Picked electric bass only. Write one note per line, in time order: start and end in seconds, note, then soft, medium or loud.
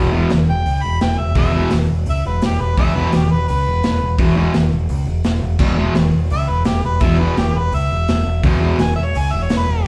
0.00 0.23 E1 medium
0.32 0.45 E1 medium
0.49 0.63 E1 medium
0.66 0.80 C#2 medium
0.84 0.98 E1 medium
1.01 1.15 E1 medium
1.19 1.33 E1 medium
1.36 1.64 E1 medium
1.72 1.86 E1 medium
1.90 2.04 E1 medium
2.06 2.21 C#2 medium
2.25 2.39 E1 loud
2.43 2.57 E1 loud
2.59 2.74 E1 medium
2.78 3.05 E1 medium
3.14 3.27 E1 medium
3.32 3.45 E1 medium
3.49 3.63 C#2 loud
3.67 3.80 E1 loud
3.84 3.98 E1 medium
4.02 4.15 E1 medium
4.19 4.47 E1 loud
4.55 4.68 E1 medium
4.72 4.86 E1 medium
4.90 5.04 C#2 medium
5.06 5.21 E1 loud
5.25 5.39 E1 medium
5.42 5.56 E1 medium
5.59 5.88 E1 medium
5.96 6.10 E1 medium
6.14 6.28 E1 medium
6.31 6.45 C#2 loud
6.49 6.63 E1 medium
6.65 6.80 E1 medium
6.84 6.98 E1 loud
7.01 7.29 E1 loud
7.37 7.52 E1 medium
7.54 7.69 E1 medium
7.72 7.87 C#2 medium
7.90 8.05 E1 medium
8.08 8.23 E1 medium
8.25 8.40 E1 medium
8.43 8.72 E1 loud
8.80 8.94 E1 medium
8.98 9.12 E1 medium
9.15 9.30 C#2 loud
9.33 9.47 E1 loud
9.50 9.65 E1 medium
9.69 9.83 E1 loud